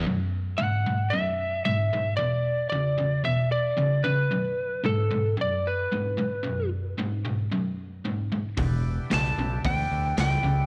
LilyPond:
<<
  \new Staff \with { instrumentName = "Lead electric guitar" } { \time 4/4 \key b \minor \tempo 4 = 113 r4 fis''4 e''4 e''4 | d''4 d''4 e''8 d''4 b'8~ | b'4 a'4 d''8 b'4.~ | b'8 r2. r8 |
r4 a''4 g''4 g''4 | }
  \new Staff \with { instrumentName = "Tonewheel organ" } { \time 4/4 \key b \minor r1 | r1 | r1 | r1 |
<b d' e' g'>1 | }
  \new Staff \with { instrumentName = "Overdriven electric guitar" } { \clef bass \time 4/4 \key b \minor <b,, fis,>4 <b,, gis,>8 <b,, gis,>8 <b,, fis,>4 <b,, gis,>8 <b,, gis,>8 | <e, b,>4 <e, cis>8 <e, cis>8 <e, b,>4 <e, cis>8 <e, cis>8 | <b,, fis,>4 <b,, gis,>8 <b,, gis,>8 <b,, fis,>4 <b,, gis,>8 <b,, gis,>8 | <b,, fis,>4 <b,, gis,>8 <b,, gis,>8 <b,, fis,>4 <b,, gis,>8 <b,, gis,>8 |
<e, b,>4 <e, cis>8 <e, cis>8 <e, b,>4 <e, cis>8 <e, cis>8 | }
  \new Staff \with { instrumentName = "Fingered electric bass" } { \clef bass \time 4/4 \key b \minor r1 | r1 | r1 | r1 |
e,,4 b,,8 b,,8 d,8 d,8 cis,8 cis,8 | }
  \new DrumStaff \with { instrumentName = "Drums" } \drummode { \time 4/4 r4 r4 r4 r4 | r4 r4 r4 r4 | r4 r4 r4 r4 | r4 r4 r4 r4 |
<hho bd>4 <hho sn>4 <hho bd>4 <hho sn>4 | }
>>